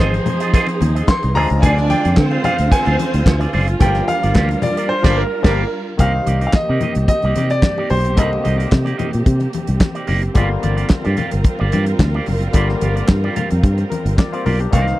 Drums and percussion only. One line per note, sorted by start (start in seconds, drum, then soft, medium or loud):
0.00 cowbell medium
0.14 closed hi-hat soft
0.26 closed hi-hat medium
0.26 high conga medium
0.26 low conga medium
0.40 closed hi-hat medium
0.54 kick loud
0.54 closed hi-hat medium
0.54 cowbell medium
0.54 muted conga soft
0.54 high conga medium
0.67 closed hi-hat soft
0.67 muted conga soft
0.81 closed hi-hat medium
0.81 high conga medium
0.96 closed hi-hat medium
1.07 kick loud
1.07 snare loud
1.07 clap loud
1.07 cowbell loud
1.07 high conga medium
1.23 closed hi-hat soft
1.23 muted conga soft
1.35 open hi-hat medium
1.35 low conga medium
1.50 closed hi-hat soft
1.63 kick loud
1.63 closed hi-hat loud
1.63 cowbell medium
1.63 low conga medium
1.78 snare soft
1.78 muted conga soft
1.90 closed hi-hat medium
1.90 high conga medium
2.05 closed hi-hat soft
2.17 kick loud
2.17 snare loud
2.17 clap medium
2.17 cowbell medium
2.17 high conga medium
2.31 muted conga soft
2.44 closed hi-hat medium
2.44 high conga medium
2.44 low conga medium
2.59 closed hi-hat medium
2.72 kick loud
2.72 closed hi-hat medium
2.72 cowbell medium
2.72 high conga medium
2.85 closed hi-hat soft
2.85 muted conga soft
2.99 closed hi-hat medium
2.99 high conga medium
3.14 closed hi-hat medium
3.26 kick loud
3.26 snare loud
3.26 clap medium
3.26 cowbell loud
3.26 high conga medium
3.41 closed hi-hat soft
3.41 muted conga soft
3.53 open hi-hat medium
3.53 low conga medium
3.68 closed hi-hat soft
3.80 kick loud
3.80 closed hi-hat medium
3.80 cowbell medium
3.80 low conga medium
3.95 snare soft
3.95 closed hi-hat soft
3.95 muted conga soft
4.08 closed hi-hat medium
4.08 high conga medium
4.23 closed hi-hat soft
4.34 kick loud
4.34 snare loud
4.34 clap medium
4.34 cowbell medium
4.34 high conga medium
4.49 closed hi-hat soft
4.49 muted conga soft
4.62 closed hi-hat medium
4.62 high conga medium
4.62 low conga medium
4.77 closed hi-hat medium
5.04 kick loud
5.04 snare loud
5.04 crash medium
5.44 kick loud
5.44 snare loud
5.44 crash medium
5.99 kick loud
5.99 closed hi-hat medium
5.99 low conga medium
6.26 closed hi-hat medium
6.26 high conga medium
6.41 closed hi-hat soft
6.53 kick loud
6.53 snare loud
6.53 clap medium
6.53 muted conga soft
6.53 high conga medium
6.81 closed hi-hat medium
6.81 high conga medium
6.81 low conga medium
6.95 closed hi-hat medium
7.08 kick loud
7.08 closed hi-hat medium
7.08 muted conga soft
7.08 high conga soft
7.22 closed hi-hat soft
7.36 closed hi-hat medium
7.36 high conga medium
7.50 closed hi-hat soft
7.62 kick loud
7.62 snare loud
7.62 clap medium
7.62 high conga medium
7.78 muted conga soft
7.90 open hi-hat medium
7.90 low conga medium
8.05 closed hi-hat soft
8.17 kick loud
8.17 closed hi-hat medium
8.17 low conga medium
8.33 muted conga soft
8.45 closed hi-hat medium
8.45 high conga medium
8.60 closed hi-hat soft
8.72 kick loud
8.72 snare loud
8.72 clap medium
8.72 muted conga soft
8.72 high conga medium
8.86 closed hi-hat soft
8.86 muted conga soft
8.99 closed hi-hat medium
8.99 high conga medium
8.99 low conga medium
9.13 closed hi-hat medium
9.26 kick loud
9.26 closed hi-hat medium
9.26 high conga medium
9.40 closed hi-hat soft
9.40 muted conga soft
9.53 closed hi-hat medium
9.53 high conga medium
9.67 closed hi-hat soft
9.80 kick loud
9.80 snare loud
9.80 clap medium
9.80 muted conga soft
9.80 high conga medium
9.95 closed hi-hat soft
10.07 open hi-hat medium
10.07 low conga medium
10.22 closed hi-hat soft
10.35 kick loud
10.35 closed hi-hat medium
10.35 muted conga soft
10.35 low conga medium
10.63 closed hi-hat medium
10.63 high conga medium
10.78 closed hi-hat soft
10.89 kick loud
10.89 snare loud
10.89 clap medium
10.89 high conga medium
11.05 closed hi-hat soft
11.05 muted conga soft
11.17 closed hi-hat medium
11.17 high conga medium
11.17 low conga medium
11.31 closed hi-hat medium
11.44 kick loud
11.44 closed hi-hat medium
11.44 muted conga soft
11.44 high conga soft
11.59 muted conga soft
11.72 closed hi-hat medium
11.72 high conga medium
11.86 closed hi-hat soft
11.99 kick loud
11.99 snare loud
11.99 clap medium
11.99 muted conga soft
11.99 high conga medium
12.14 muted conga soft
12.26 open hi-hat medium
12.26 low conga medium
12.41 closed hi-hat soft
12.53 kick loud
12.53 closed hi-hat medium
12.69 snare soft
12.69 muted conga soft
12.81 closed hi-hat medium
12.81 high conga medium
12.97 closed hi-hat soft
13.08 kick loud
13.08 snare loud
13.08 clap medium
13.08 muted conga soft
13.08 high conga medium
13.24 muted conga soft
13.36 closed hi-hat medium
13.36 high conga medium
13.36 low conga medium
13.51 closed hi-hat medium
13.64 kick loud
13.64 closed hi-hat medium
13.78 closed hi-hat soft
13.78 muted conga soft
13.92 closed hi-hat medium
13.92 high conga medium
14.06 closed hi-hat medium
14.18 kick loud
14.18 snare loud
14.18 clap medium
14.18 high conga medium
14.33 closed hi-hat soft
14.46 open hi-hat medium
14.46 low conga medium
14.60 closed hi-hat soft
14.72 kick loud
14.72 closed hi-hat medium
14.72 cowbell medium
14.72 muted conga soft
14.72 low conga medium
14.88 snare soft
14.88 closed hi-hat soft
14.88 muted conga soft